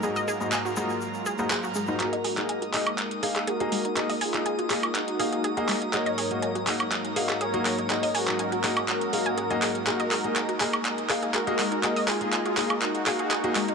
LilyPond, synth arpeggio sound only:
\new Staff \with { instrumentName = "Synth arpeggio sound" } { \time 4/4 \key dis \minor \tempo 4 = 122 gis'16 dis''16 gis'16 r16 gis''16 fis'16 gis'16 r8. gis'16 gis'16 gis'16 fis'16 gis16 dis'16 | gis'16 dis''16 gis'16 r16 gis''16 fis'16 gis'16 r8. gis'16 gis'16 gis'16 fis'16 gis16 dis'16 | gis'16 dis''16 gis'16 r16 gis''16 fis'16 gis'16 r8. gis'16 gis'16 gis'16 fis'16 gis16 dis'16 | gis'16 dis''16 gis'16 r16 gis''16 fis'16 gis'16 r8. gis'16 gis'16 gis'16 fis'16 gis16 dis'16 |
gis'16 dis''16 gis'16 r16 gis''16 fis'16 gis'16 r8. gis'16 gis''16 gis'16 gis''16 gis'16 r16 | gis'16 dis''16 gis'16 r16 gis''16 fis'16 gis'16 r8. gis'16 gis'16 gis'16 fis'16 gis16 dis'16 | gis'16 dis''16 gis'16 r16 gis''16 fis'16 gis'16 r8. gis'16 gis'16 gis'16 fis'16 gis16 dis'16 | }